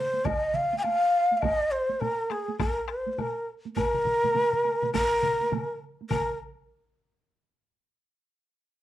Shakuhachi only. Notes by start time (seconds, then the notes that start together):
Already playing: C5
0.25 D#5
0.55 F5
0.78 G#5
0.83 F5
1.37 F5
1.42 D#5
1.71 C5
2.00 A#4
2.31 G#4
2.60 A#4
2.89 C5
3.13 C5
3.19 A#4
3.76 A#4
4.94 A#4
6.10 A#4